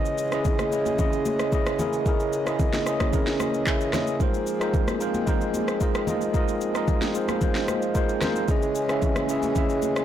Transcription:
Already playing: tine electric piano C#3 C#4 E4 G#4 D#5, harmonium E3 G#3 C#4 G#4 D#5
0.05 shaker
0.18 shaker
0.31 tine electric piano C#3 C#4 E4 G#4 D#5, cross-stick, shaker
0.45 kick, low conga, shaker
0.59 cross-stick, high conga, shaker
0.71 tine electric piano C#3 C#4 E4 G#4 D#5, shaker
0.86 high conga, shaker
0.98 tine electric piano C#3 C#4 E4 G#4 D#5, kick, low conga, shaker
1.13 shaker
1.26 high conga, shaker
1.39 cross-stick, shaker
1.51 tine electric piano C#3 C#4 E4 G#4 D#5, kick, shaker
1.66 cross-stick, shaker
1.78 tine electric piano C#3 C#4 E4 G#4 A#4, high conga, low conga, shaker
1.93 shaker
2.05 tine electric piano C#3 C#4 E4 G#4 A#4, kick, shaker
2.20 shaker
2.33 shaker
2.45 tine electric piano C#3 C#4 E4 G#4 D#5, cross-stick, shaker
2.59 kick, low conga, shaker
2.73 snare, high conga, shaker
2.85 tine electric piano C#3 C#4 E4 G#4 D#5, cross-stick, shaker
3.00 kick, cross-stick, high conga, shaker
3.12 tine electric piano C#3 C#4 E4 G#4 A#4, kick, low conga, shaker
3.27 snare, shaker
3.40 cross-stick, high conga, shaker
3.54 shaker
3.66 tine electric piano C#3 C#4 E4 G#4 E5, kick, clap, shaker
3.81 shaker
3.92 tine electric piano C#3 C#4 E4 G#4 D#5, cross-stick, snare, high conga, low conga, shaker
4.07 shaker
4.19 harmonium F3 A#3 C4, tine electric piano G#3 D#4 F4 A#4 C5, kick, shaker
4.34 shaker
4.47 shaker
4.60 tine electric piano G#3 D#4 F4 A#4 C5, cross-stick, shaker
4.74 kick, low conga, shaker
4.88 cross-stick, high conga, shaker
4.99 tine electric piano G#3 D#4 F4 A#4 C5, shaker
5.14 high conga, shaker
5.26 tine electric piano G#3 D#4 F4 A#4 C5, kick, low conga, shaker
5.41 shaker
5.54 high conga, shaker
5.68 cross-stick, shaker
5.80 tine electric piano G#3 D#4 F4 A#4 D#5, kick, shaker
5.95 cross-stick, shaker
6.07 tine electric piano G#3 D#4 F4 A#4 D#5, high conga, low conga, shaker
6.21 shaker
6.33 tine electric piano G#3 D#4 F4 A#4 D#5, kick, shaker
6.48 shaker
6.61 shaker
6.74 tine electric piano G#3 D#4 F4 A#4 D#5, cross-stick, shaker
6.88 kick, low conga, shaker
7.02 snare, high conga, shaker
7.14 tine electric piano G#3 D#4 F4 A#4 C5, shaker
7.29 cross-stick, high conga, shaker
7.40 tine electric piano G#3 D#4 F4 A#4 C5, kick, low conga, shaker
7.55 snare, shaker
7.68 cross-stick, high conga, shaker
7.82 shaker
7.94 tine electric piano G#3 D#4 F4 A#4 C5, kick, shaker
8.09 shaker
8.21 tine electric piano G#3 D#4 F4 A#4 C5, cross-stick, snare, high conga, low conga, shaker
8.36 shaker
8.48 tine electric piano C#3 C#4 E4 G#4 D#5, harmonium E3 G#3 C#4 G#4, kick, shaker
8.62 shaker
8.75 shaker
8.88 tine electric piano C#3 C#4 E4 G#4 E5, cross-stick, shaker
9.02 kick, low conga, shaker
9.16 cross-stick, high conga, shaker
9.28 tine electric piano C#3 C#4 E4 G#4 E5, shaker
9.43 high conga, shaker
9.54 tine electric piano C#3 C#4 E4 G#4 E5, kick, low conga, shaker
9.70 shaker
9.82 high conga, shaker
9.96 cross-stick, shaker

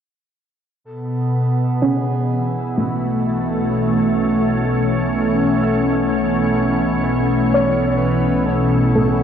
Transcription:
0.84 synth drone B1, ambient pad B2, soft synth lead A4
1.81 synth pluck C#4, soft synth lead G#4
2.18 ambient pad E3
2.75 ambient pad A3, synth pluck A3, soft synth lead F#4
3.37 ambient pad C#4
4.65 soft synth lead A4
5.63 synth pluck E6
7.03 soft synth lead C#5
7.54 synth pluck C#5
7.97 soft synth lead B4
8.45 soft synth lead A4
8.95 synth pluck A3

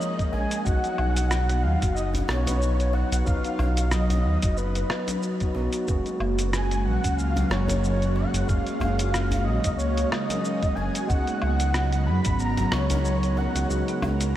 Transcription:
Already playing: tine electric piano G#3 A#3 C#4 F4 A#4, soft synth lead D#5
0.01 marimba C#4, shaker
0.19 kick, closed hi-hat, shaker
0.32 analog synth bass A#1, marimba G#3, soft synth lead G#5, djembe slap, djembe tone
0.51 closed hi-hat, shaker
0.65 analog synth bass B1, tine electric piano F#3 B3 D#4 F#4, marimba F#4, soft synth lead F#5, kick, djembe tone, shaker
0.84 closed hi-hat, shaker
0.98 analog synth bass B1, marimba D#4, low woodblock
1.16 closed hi-hat, djembe slap, shaker
1.31 cross-stick, shaker
1.49 marimba B3, closed hi-hat, shaker
1.63 analog synth bass D#2, marimba F#3, soft synth lead F5
1.82 analog synth bass F#1, marimba F#4, kick, closed hi-hat, shaker
1.95 marimba D#4, soft synth lead D#5, shaker
2.14 closed hi-hat, djembe slap, djembe bass, shaker
2.27 analog synth bass B1, marimba B3, soft synth lead C#5, cross-stick, djembe slap, djembe tone
2.46 tine electric piano F#3 B3 D#4 B4, closed hi-hat, djembe slap, djembe bass, shaker
2.62 marimba F#3, shaker
2.80 closed hi-hat, shaker
2.93 marimba F#4, soft synth lead F#5, djembe slap
3.12 analog synth bass B1, closed hi-hat, shaker
3.25 analog synth bass B1, tine electric piano F#3 B3 D#4, soft synth lead F5, kick, djembe tone, shaker
3.29 tine electric piano F#4
3.44 marimba D#4, closed hi-hat, shaker
3.59 analog synth bass B1, marimba B3, djembe bass, low woodblock
3.77 closed hi-hat, djembe slap, shaker
3.91 marimba F#3, soft synth lead D#5, cross-stick, shaker
4.10 closed hi-hat, djembe bass, shaker
4.25 analog synth bass D#2
4.42 analog synth bass F#1, marimba F#4, kick, closed hi-hat, shaker
4.57 marimba D#4, soft synth lead B4, shaker
4.75 closed hi-hat, shaker
4.90 marimba B3, cross-stick, low woodblock
5.08 marimba F#3, closed hi-hat, djembe tone, shaker
5.23 marimba F#4, shaker
5.40 tine electric piano F#3 B3 D#4 F#4, marimba D#4, kick, closed hi-hat, shaker
5.55 analog synth bass B1, tine electric piano F#3 B3 D#4 F#4, marimba B3, djembe slap, djembe tone
5.73 closed hi-hat, shaker
5.86 analog synth bass F#1, analog synth pad C#3 F#3 G#3 A#3 F#4, tine electric piano G#3 A#3 C#4, marimba C#4, kick, djembe tone, shaker
5.90 tine electric piano F#4
6.06 closed hi-hat, shaker
6.20 analog synth bass F#1, marimba A#3, low woodblock
6.38 closed hi-hat, djembe slap, shaker
6.53 soft synth lead G#5, cross-stick, shaker
6.70 marimba G#3, closed hi-hat, shaker
6.85 analog synth bass A#1, marimba F#3, soft synth lead F#5
7.04 analog synth bass C#2, marimba C#4, kick, closed hi-hat, shaker
7.18 marimba A#3, soft synth lead F5, shaker
7.36 marimba F#3, closed hi-hat, djembe slap, djembe bass, shaker
7.50 analog synth bass F#1, marimba G#3, soft synth lead C#5, cross-stick, djembe slap, djembe tone
7.67 tine electric piano G#3 A#3 C#4 A#4, closed hi-hat, djembe slap, djembe bass, shaker
7.83 marimba F#3, shaker
8.02 closed hi-hat, shaker
8.15 marimba C#4, soft synth lead F#5, djembe slap
8.34 analog synth bass F#1, closed hi-hat, shaker
8.47 analog synth bass F#1, tine electric piano G#3 A#3 C#4 F#4, soft synth lead F5, kick, djembe tone, shaker
8.67 marimba A#3, closed hi-hat, shaker
8.80 analog synth bass F#1, marimba G#3, djembe bass, low woodblock
8.99 closed hi-hat, djembe slap, shaker
9.14 cross-stick, shaker
9.31 closed hi-hat, djembe bass, shaker
9.44 analog synth bass A#1, soft synth lead D#5
9.64 analog synth bass C#2, marimba C#4, kick, closed hi-hat, shaker
9.78 marimba A#3, soft synth lead C#5, shaker
9.97 closed hi-hat, shaker
10.11 marimba G#3, soft synth lead D#5, cross-stick, low woodblock
10.29 marimba F#3, tine electric piano G#3 A#3 C#4 A#4, closed hi-hat, djembe tone, shaker
10.45 marimba C#4, shaker
10.62 marimba A#3, kick, closed hi-hat, shaker
10.75 analog synth bass F#1, marimba G#3, soft synth lead G#5, djembe slap, djembe tone
10.95 closed hi-hat, shaker
11.08 analog synth bass C#2, analog synth pad C#3 F#3 B3, tine electric piano G#3 B3 D#4 F#4, marimba C#4, soft synth lead F#5, kick, djembe tone, shaker
11.27 closed hi-hat, shaker
11.42 analog synth bass C#2, marimba B3, soft synth lead F#5, low woodblock
11.60 closed hi-hat, djembe slap, shaker
11.74 cross-stick, shaker
11.92 marimba G#3, closed hi-hat, shaker
12.06 analog synth bass F#2, marimba F#3, soft synth lead B5
12.25 analog synth bass G#1, marimba C#4, kick, closed hi-hat, shaker
12.39 marimba B3, soft synth lead A#5, shaker
12.57 marimba F#3, closed hi-hat, djembe slap, djembe bass, shaker
12.71 analog synth bass C#2, soft synth lead C#5, cross-stick, djembe slap, djembe tone
12.90 tine electric piano G#3 B3 D#4 A#4, closed hi-hat, djembe slap, djembe bass, shaker
13.05 marimba F#3, shaker
13.23 closed hi-hat, shaker
13.37 marimba C#4, soft synth lead F#5, djembe slap
13.55 analog synth bass C#2, closed hi-hat, shaker
13.68 analog synth bass C#2, tine electric piano G#3 B3 D#4, analog synth pad A#4, djembe tone, shaker
13.73 tine electric piano F#4
13.88 marimba B3, closed hi-hat, shaker
14.02 analog synth bass C#2, marimba G#3, djembe bass, low woodblock
14.21 closed hi-hat, djembe slap, shaker

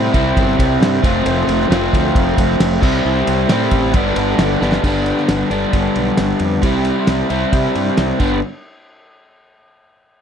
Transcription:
Already playing: overdriven electric guitar C3 G3 C4 E4
0.13 fingered electric bass C2, overdriven electric guitar C3 G3 C4 E4, kick, snare, ride
0.37 fingered electric bass G1, kick, ride
0.59 fingered electric bass C2, kick, ride
0.80 fingered electric bass G2, snare, ride
1.03 fingered electric bass F1, overdriven electric guitar F3 A3 C4 F4, kick, ride
1.25 fingered electric bass F1, ride
1.47 fingered electric bass F1, ride
1.61 snare
1.69 fingered electric bass F1, overdriven electric guitar F3 A3 C4 F4, snare, ride
1.93 fingered electric bass D2, kick, ride
2.15 fingered electric bass F1, kick, ride
2.38 fingered electric bass F1, kick, ride
2.60 fingered electric bass F1, snare, ride
2.81 fingered electric bass C2, overdriven electric guitar C3 G3 C4 E4, kick, crash
3.05 fingered electric bass C2
3.27 fingered electric bass C2, ride
3.49 fingered electric bass A2, overdriven electric guitar C3 G3 C4, snare, ride
3.53 overdriven electric guitar E4
3.71 fingered electric bass A1, kick, ride
3.93 fingered electric bass G1, overdriven electric guitar G2 D3 G3 B3, kick, ride
3.97 overdriven electric guitar D4
4.16 fingered electric bass G1, ride
4.38 fingered electric bass G1, snare, ride
4.61 fingered electric bass G1, overdriven electric guitar G2 D3 G3 B3 D4, snare
4.72 snare
4.83 fingered electric bass G1, overdriven electric guitar G2 D3 G3 B3, kick, crash
4.87 overdriven electric guitar D4
5.06 ride
5.18 snare
5.29 fingered electric bass G1, snare, ride
5.50 fingered electric bass G1, overdriven electric guitar G2 D3 G3 B3 D4, ride
5.73 fingered electric bass G1, kick, ride
5.96 fingered electric bass B1, ride
6.17 fingered electric bass G1, snare, ride
6.39 fingered electric bass F2, ride
6.63 fingered electric bass C2, overdriven electric guitar C3 G3 C4 E4, kick, ride
6.85 ride
7.07 fingered electric bass C2, snare, ride
7.30 fingered electric bass C2, overdriven electric guitar C3 G3 C4 E4, ride
7.52 fingered electric bass C3, kick, ride
7.75 fingered electric bass G2, ride
7.97 fingered electric bass C2, snare, ride
8.20 fingered electric bass G1, overdriven electric guitar G2 D3 G3 B3 D4, kick, crash

